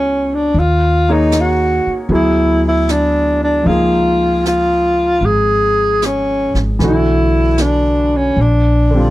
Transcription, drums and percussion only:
0.53 brush sweep
1.32 snare, hi-hat pedal
2.11 brush sweep
2.89 snare, hi-hat pedal
3.68 brush sweep
4.45 snare, hi-hat pedal
5.24 brush sweep
6.02 snare, hi-hat pedal
6.55 snare
6.80 brush sweep, snare
7.58 snare, hi-hat pedal
8.37 brush sweep

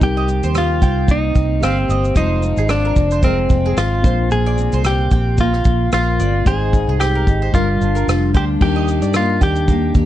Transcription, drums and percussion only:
0.01 kick, shaker
0.29 shaker
0.43 shaker
0.55 cross-stick, shaker
0.82 kick, shaker
1.08 kick, shaker
1.35 kick, shaker
1.63 cross-stick, shaker
1.90 shaker
2.04 shaker
2.16 kick, shaker
2.43 shaker
2.57 shaker
2.69 cross-stick, shaker
2.96 kick, shaker
3.11 shaker
3.23 kick, shaker
3.49 kick, shaker
3.77 cross-stick, shaker
4.04 kick, shaker
4.31 shaker
4.58 shaker
4.72 shaker
4.84 cross-stick, shaker
5.11 kick, shaker
5.38 kick, shaker
5.53 cross-stick
5.65 kick, shaker
5.92 cross-stick, shaker
6.20 shaker
6.46 kick, shaker
6.73 kick, shaker
7.00 cross-stick, shaker
7.27 kick, shaker
7.54 kick, shaker
7.81 shaker
7.96 shaker
8.09 cross-stick, shaker
8.35 kick, shaker
8.61 kick, crash
8.88 shaker
9.02 shaker
9.14 cross-stick, shaker
9.41 kick, shaker
9.56 shaker
9.68 kick, shaker
9.95 kick, shaker

